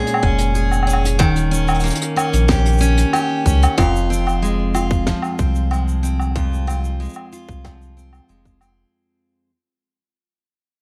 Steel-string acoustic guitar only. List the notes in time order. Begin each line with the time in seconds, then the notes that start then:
Already playing: A#2 G#3 C#4 G#4
0.23 C#4
0.55 G#4
0.87 C#4
1.19 D#3
1.51 C#4
1.84 A#3
2.16 C#4
2.48 G4
2.81 C#4
3.13 G4
3.46 C#4
3.78 F2 F4
4.10 C4
4.42 G#3
4.74 F4
5.07 F3
5.39 C4
5.71 G#3
6.03 C4
6.35 F2 F4
6.67 C4
7.00 G#3
7.33 F4
7.64 F3
7.97 C4
8.29 G#3
8.61 C4